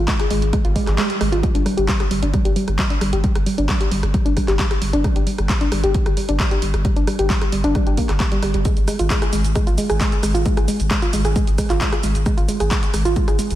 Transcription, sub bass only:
0.31 G#1
0.42 G#1
0.65 G#1
0.87 G#1
1.21 G#1
1.32 G#1
1.55 G1
1.77 G1
2.11 G1
2.23 G1
2.45 G1
2.68 G1
3.01 G1
3.13 G1
3.35 G1
3.58 G1
3.91 G1
4.03 G1
4.26 G1
4.48 G1
4.82 G1
4.93 G1
5.16 G1
5.38 G1
5.72 G1
5.84 G1
6.06 G1
6.29 G1
6.62 G1
6.74 G1
6.96 G1
7.19 G1
7.52 G1
7.64 G1
7.87 G1
8.09 G1
8.43 G1
8.54 G1
8.77 G#1
8.99 G#1
9.33 G#1
9.44 G#1
9.67 G#1
9.90 G#1
10.23 G#1
10.35 G#1
10.57 G#1
10.80 G#1
11.13 G#1
11.25 G#1
11.47 G#1
11.70 G#1
12.03 G#1
12.15 G#1
12.37 G#1
12.60 G#1
12.94 G#1
13.05 G#1
13.28 G#1
13.50 G#1

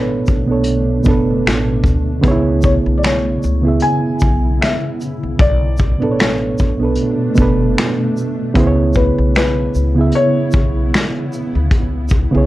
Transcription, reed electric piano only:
Already playing: B2 B3 D4 A4 C#5
0.46 B2 B3 D4
0.51 A4 C#5
1.03 B2 B3 D4
1.08 A4 B4
2.21 C#3 B3 D#4
2.26 G#4 C#5
2.31 E4
3.62 C#3 B3 E4
3.66 G#4 E5
5.99 B2 B3 D4
6.03 A4 B4
6.11 C#5
6.78 B2 B3 D4
6.83 A4 B4
7.35 B2 B3 D4
7.40 A4 B4
8.54 C#3 B3 E4
8.59 G#4 C5
8.67 C#5
9.94 C#3 B3 E4
9.99 G#4 E5
12.31 C#3 B3 E4
12.36 G#4 C#5

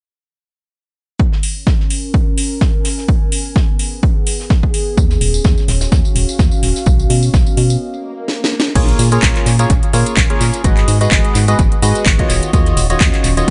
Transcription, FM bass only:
4.98 D#2
5.21 D#1
5.45 D#2
5.68 D#1
5.92 D#2
6.16 D#1
6.39 D#2
6.63 D#1
6.86 B1
7.10 B2
7.34 B1
7.57 B2
8.76 A#1
8.99 A#2
9.23 A#1
9.46 A#2
9.70 A#1
9.94 A#2
10.17 A#1
10.41 A#2
10.64 G#1
10.88 G#2
11.12 G#1
11.35 G#2
11.59 G#1
11.82 G#2
12.06 G#1
12.30 D#1
12.53 D#2
12.77 D#1
13.01 D#2
13.24 D#1

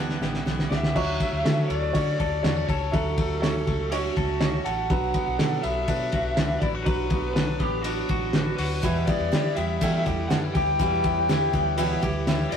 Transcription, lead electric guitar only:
0.70 E5
1.68 D5
2.19 D5
2.67 C#5
2.92 A4
3.41 A4
3.90 F#4
4.64 F#5
5.62 E5
6.59 D5
6.84 B4
7.34 B4
7.59 G4
7.82 F#4
8.56 B4
9.05 D5
9.55 E5
10.28 F#5
10.54 G5
12.51 E5

